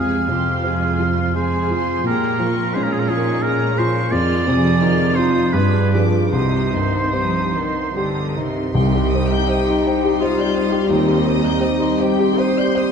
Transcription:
Already playing: grand piano F2, cello section F2, viola section G#3 G#4, violin section G#4 G#5, oboe F5
0.28 grand piano C3, viola section F3 F4, violin section G4 C6
0.64 viola section G#3 G#4, grand piano C4, violin section F4 G#5
0.99 viola section F3 F4, grand piano F4, violin section C6
1.35 viola section G#3 G#4, grand piano G#4, violin section G#4 G#5, oboe C5
1.70 viola section F3 F4, grand piano F4, violin section C6
2.04 grand piano A#2, cello section A#2, viola section G#3 G#4, violin section G4, oboe A#4
2.08 violin section A#5
2.39 grand piano F3, viola section F3 A#4, violin section F4 C#6
2.74 viola section G#3 G#4, grand piano C#4, violin section D#4 A#5, oboe C5
2.83 oboe A#4
2.92 oboe G#4
2.99 oboe A#4
3.08 viola section F3 A#4, grand piano F4, oboe G#4, violin section C#6
3.41 viola section G#3 G#4, violin section C#4 A#5, grand piano G#4, oboe A#4
3.77 viola section F3 A#4, grand piano F4, oboe C5, violin section C#6
4.10 grand piano F2, cello section F2, viola section D#3 G#4, violin section F4 F6, oboe D5
4.45 grand piano C3, viola section F3 F4, violin section G#4 D#6
4.80 viola section D#3 G#4, grand piano D#4, violin section F4 F6
5.15 viola section F3 F4, violin section D#4 D#6, grand piano F4, oboe C5
5.51 grand piano G2, cello section G2, viola section G3 G#4, violin section D4 B5, oboe B4
5.92 viola section F3 G4, grand piano F4 G#4, violin section D6
6.30 grand piano C2, cello section C3, viola section G3 G4, violin section D#4 D#6, oboe C5
6.72 grand piano G2, viola section D#3 D#4, violin section C6
7.13 cello section F3, viola section G3 G4, grand piano C4, violin section D#6
7.54 cello section D#3, viola section D#3 D#4, grand piano D#4, violin section C6
7.94 cello section D3, viola section G3 G4, grand piano G4, violin section D#6
8.35 cello section C3, viola section D#3 D#4, grand piano D#4, violin section C6
8.73 double bass section C2, tuba C2, cello section C2, grand piano C2, timpani C3, french horn section G3 D#4, viola section G3 D#4, clarinet G4, violin section G5 C6
8.93 grand piano G4, violin section C6
9.12 grand piano C5, violin section D#6
9.31 grand piano D#4, violin section G6
9.48 grand piano C5, violin section D#6
9.66 grand piano D#4, violin section C6
9.86 grand piano C5, violin section G5
10.04 grand piano G4, violin section C6
10.20 clarinet F4, grand piano C5, violin section F5 D#6
10.39 grand piano D5, violin section G6
10.56 grand piano C5, violin section D#6
10.72 grand piano G4, violin section C6
10.89 tuba D#2, grand piano D#2, double bass section D#2, cello section D#2, french horn section C4, clarinet D#4, viola section G4, violin section D#5 G5
11.07 grand piano G4, violin section C6
11.26 grand piano C5, violin section D#6
11.43 grand piano D#4, violin section G6
11.61 grand piano C5, violin section D#6
11.80 grand piano D#4, violin section C6
11.98 clarinet G4, grand piano C5, violin section G5
12.19 grand piano G4, violin section C6
12.38 grand piano C5, clarinet C5, violin section C6 D#6
12.58 grand piano D5, violin section G6
12.75 grand piano C5, violin section D#6

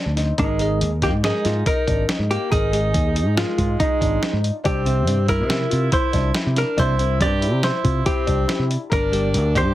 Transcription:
Already playing: grand piano D4
0.06 fingered electric bass D2
0.16 grand piano D#4, snare, closed hi-hat
0.38 fingered electric bass G#1, alto saxophone G#3, hollow-body jazz guitar D#4, grand piano A#4, kick, closed hi-hat
0.59 tine electric piano G#3 G#4 A#4 D#5, grand piano G#4, closed hi-hat
0.81 fingered electric bass D#2, closed hi-hat
1.02 alto saxophone A#3, grand piano D#4, hollow-body jazz guitar G4, kick, snare, closed hi-hat
1.14 fingered electric bass G#2
1.23 tine electric piano G#3 G#4 A#4 D#5, grand piano D#4, alto saxophone D#4, hollow-body jazz guitar G#4, snare, closed hi-hat
1.45 fingered electric bass G#2, grand piano F4, snare, closed hi-hat
1.66 grand piano D#4, alto saxophone D#4, hollow-body jazz guitar A#4, kick, closed hi-hat
1.88 fingered electric bass G#1, grand piano D4, kick, closed hi-hat
2.08 grand piano D#4, snare, closed hi-hat
2.19 fingered electric bass G#2
2.31 alto saxophone A#3, hollow-body jazz guitar G4, closed hi-hat
2.50 fingered electric bass G#1, alto saxophone D#4, hollow-body jazz guitar G#4, grand piano A#4, kick, closed hi-hat
2.72 tine electric piano G#3 G#4 A#4 D#5, grand piano G#4, closed hi-hat
2.94 fingered electric bass D#2, kick, closed hi-hat
3.15 grand piano D#4, closed hi-hat
3.26 fingered electric bass G#2
3.36 alto saxophone G#3, tine electric piano G#3 G#4 A#4 D#5, grand piano D#4, hollow-body jazz guitar F4, snare, closed hi-hat
3.58 fingered electric bass G#2, grand piano F4, kick, closed hi-hat
3.79 alto saxophone G#3, grand piano D#4, hollow-body jazz guitar D#4, kick, closed hi-hat
4.00 fingered electric bass G#1, grand piano D4, kick, closed hi-hat
4.22 grand piano D#4, snare, closed hi-hat
4.33 fingered electric bass G#2
4.44 closed hi-hat
4.64 fingered electric bass C2, alto saxophone C4, grand piano D4, hollow-body jazz guitar G4, kick, closed hi-hat
4.85 tine electric piano C3 C4 G4 E5, grand piano C4, closed hi-hat
5.07 fingered electric bass G2, closed hi-hat
5.28 grand piano E4, alto saxophone E4, hollow-body jazz guitar A#4, kick, closed hi-hat
5.40 fingered electric bass C3
5.49 tine electric piano C3 C4 G4 E5, grand piano E4, snare, closed hi-hat
5.70 fingered electric bass C3, grand piano F4, closed hi-hat
5.91 grand piano E4, alto saxophone E4, hollow-body jazz guitar C5, kick, closed hi-hat
6.13 fingered electric bass C2, grand piano D4, kick, snare, closed hi-hat
6.34 grand piano E4, snare, closed hi-hat
6.46 fingered electric bass C3
6.56 alto saxophone D4, hollow-body jazz guitar A#4, snare, closed hi-hat
6.77 fingered electric bass C2, tine electric piano C3 C4 G4 E5, grand piano D4, alto saxophone E4, hollow-body jazz guitar C5, kick, closed hi-hat
6.98 grand piano C4, closed hi-hat
7.20 fingered electric bass G2, alto saxophone G4, hollow-body jazz guitar D5, kick, closed hi-hat
7.41 grand piano E4, closed hi-hat
7.53 fingered electric bass C3
7.63 grand piano E4, alto saxophone E4, hollow-body jazz guitar C5, snare, closed hi-hat
7.84 fingered electric bass C3, grand piano F4, kick, closed hi-hat
8.05 alto saxophone C4, grand piano E4, hollow-body jazz guitar G4, kick, closed hi-hat
8.27 fingered electric bass C2, grand piano D4, kick, closed hi-hat
8.47 grand piano E4, snare, closed hi-hat
8.59 fingered electric bass C3
8.71 closed hi-hat
8.90 fingered electric bass G1, alto saxophone D4, grand piano A#4, hollow-body jazz guitar A#4, kick, closed hi-hat
9.12 tine electric piano G3 G4 A#4 D5, grand piano G4, closed hi-hat
9.34 fingered electric bass D2, closed hi-hat
9.55 grand piano D4, alto saxophone G4, hollow-body jazz guitar C5, kick, closed hi-hat
9.65 fingered electric bass G2

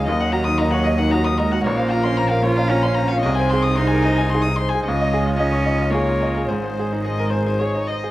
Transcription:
Already playing: analog synth pad D#4, harp D#5
0.06 double bass D#2, grand piano D#2, cello F#3, harp D#4, analog synth pad A#4 D#5, violin D#5
0.19 harp A#4, grand piano D#5, violin F#5
0.32 grand piano F#4, violin A#5
0.44 grand piano D#4, violin D#6
0.58 harp D#4, grand piano D#5, violin A#5
0.71 grand piano C#5, harp D#5, violin F#5
0.84 violin D#5, harp D#5, grand piano D#5
0.98 grand piano D#4, harp D#5, violin F#5
1.11 harp D#4, grand piano F#4, violin A#5
1.25 grand piano D#4, harp A#4, violin D#6
1.38 cello G#3, harp A#4, grand piano D#5, violin A#5
1.50 harp F#4, grand piano F#4, violin F#5
1.64 double bass A#1, grand piano A#1, cello A#3, analog synth pad C#4 C5, harp A#4, violin C#5
1.77 grand piano C5, violin F5, harp F5
1.90 grand piano F4, violin A#5
2.03 grand piano C#4, violin C6
2.17 harp A#4, grand piano C5, violin A#5
2.30 grand piano A#4, violin F5, harp A#5
2.43 cello F4, grand piano C5, violin C#5, harp A#5
2.56 grand piano C#4, violin F5, harp A#5
2.69 cello C#4, grand piano F4, harp A#4, violin A#5
2.82 grand piano C#4, harp F5, violin C6
2.94 grand piano C5, harp F5, violin A#5
3.08 harp C#5, violin F5
3.12 grand piano F4
3.20 double bass C2, cello C4, analog synth pad D#4, harp G#4, violin D#5
3.24 grand piano C2, analog synth pad G#4
3.34 harp D#5, violin G#5
3.39 grand piano C5
3.50 grand piano G#4, violin C6
3.62 violin D#6
3.66 grand piano D#4
3.76 cello D#4, harp G#4, grand piano C5, violin C6
3.87 violin G#5, harp G#5
3.93 grand piano A#4
4.02 violin D#5, harp G#5
4.07 grand piano C5
4.16 violin G#5, harp G#5
4.21 grand piano D#4
4.30 harp G#4, violin C6
4.34 grand piano G#4
4.42 harp D#5, violin D#6
4.48 grand piano D#4
4.56 harp D#5, violin C6
4.61 grand piano C5
4.69 harp C5, violin G#5
4.74 grand piano G#4
4.83 double bass C#2, cello G#3, harp C#4, analog synth pad F4 C#5, violin D#5
4.88 grand piano C#2
4.96 harp G#4
5.01 grand piano D#5
5.14 grand piano G#4
5.26 grand piano F4
5.34 harp C#4, cello C#4, violin D#5
5.39 grand piano D#5
5.50 harp C#5, grand piano C#5
5.64 harp C#5, grand piano D#5
5.78 grand piano F4, harp C#5
5.90 cello A#3, harp C#4, grand piano G#4, violin C#5
6.06 grand piano F4, harp G#4
6.20 harp G#4, grand piano D#5
6.34 harp F4, grand piano G#4
6.47 double bass G#1, grand piano G#2, cello G#3, harp G#4, analog synth pad G#4 C5, violin C5
6.62 grand piano C5, harp D#5
6.79 grand piano G#4
6.92 grand piano D#4
7.03 harp G#4, grand piano C5, violin D#5
7.19 grand piano A#4, harp G#5
7.30 violin C5, grand piano C5, harp G#5
7.46 grand piano D#4, harp G#5
7.59 harp G#4, grand piano G#4, violin C#5
7.75 grand piano D#4, harp D#5
7.87 grand piano C5, violin D#5, harp D#5
8.04 grand piano G#4, harp C5

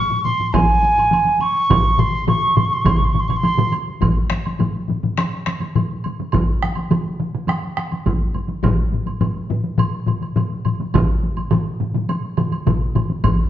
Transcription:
Already playing: piccolo C#6
0.10 taiko low-mid, taiko high
0.24 piccolo C6, taiko low-mid, taiko high
0.40 taiko low-mid, taiko high
0.47 piccolo C6
0.53 piccolo G#5, taiko, taiko low-mid, taiko high, high woodblock
0.69 taiko high
0.83 taiko high
0.97 taiko low-mid, taiko high, high woodblock
1.11 taiko high, high woodblock
1.25 taiko high
1.40 piccolo C#6, taiko high, high woodblock
1.56 taiko high
1.70 taiko, taiko low-mid, taiko mid, taiko high, high woodblock
1.85 taiko high
1.98 piccolo C6, taiko low-mid, taiko mid, taiko high
2.14 taiko high
2.27 piccolo C#6, taiko low-mid, taiko mid, taiko high, high woodblock
2.43 taiko high
2.56 piccolo C6, taiko low-mid, taiko mid
2.65 piccolo C#6
2.71 piccolo C6, taiko high
2.82 piccolo C#6, taiko, taiko low-mid, taiko mid, taiko high
2.86 piccolo C6, high woodblock
2.97 piccolo C#6, taiko low-mid, taiko mid
3.04 piccolo C6
3.13 piccolo C#6, taiko low-mid, taiko mid, taiko high
3.20 piccolo C6
3.28 piccolo C#6, taiko low-mid, taiko mid, taiko high, high woodblock
3.37 piccolo C6
3.43 taiko high, high woodblock
3.58 taiko low-mid, taiko mid, taiko high
3.72 taiko high, high woodblock
3.88 taiko high
4.01 taiko, taiko low-mid, taiko high, high woodblock
4.30 taiko rim, taiko high
4.45 taiko high, high woodblock
4.59 taiko low-mid, taiko high, high woodblock
4.88 taiko low-mid, taiko high
5.03 taiko low-mid, taiko high
5.18 taiko rim, taiko high, high woodblock
5.46 taiko rim, taiko high, high woodblock
5.61 taiko high, high woodblock
5.75 taiko low-mid, taiko high, high woodblock
6.04 taiko high, high woodblock
6.20 taiko high
6.32 taiko, taiko mid, taiko high, high woodblock
6.62 taiko rim, taiko high
6.75 taiko high, high woodblock
6.91 taiko mid, taiko high, high woodblock
7.20 taiko mid, taiko high
7.35 taiko mid
7.48 taiko rim, taiko high, high woodblock
7.77 taiko rim, taiko high, high woodblock
7.92 taiko high, high woodblock
8.06 taiko, taiko mid, taiko high, high woodblock
8.34 taiko high, high woodblock
8.49 taiko high
8.63 taiko, taiko low-mid, taiko high, high woodblock
8.92 taiko low-mid, taiko high
9.06 taiko low-mid, taiko high, high woodblock
9.21 taiko low-mid, taiko high, high woodblock
9.50 taiko low-mid, taiko high
9.64 taiko high
9.78 taiko low-mid, taiko high, high woodblock
10.06 taiko low-mid, taiko high, high woodblock
10.22 taiko high, high woodblock
10.36 taiko low-mid, taiko high, high woodblock
10.65 taiko low-mid, taiko high, high woodblock
10.81 taiko high
10.94 taiko, taiko low-mid, taiko mid, taiko high, high woodblock
11.24 taiko high
11.37 taiko high, high woodblock
11.51 taiko low-mid, taiko mid, taiko high, high woodblock
11.80 taiko low-mid, taiko mid, taiko high
11.94 taiko low-mid, taiko mid, taiko high
12.09 taiko high, high woodblock
12.37 taiko low-mid, taiko mid, taiko high, high woodblock
12.52 taiko high, high woodblock
12.67 taiko, taiko low-mid, taiko mid, taiko high, high woodblock
12.95 taiko low-mid, taiko mid, taiko high, high woodblock
13.10 taiko high
13.24 taiko, taiko low-mid, taiko high, high woodblock

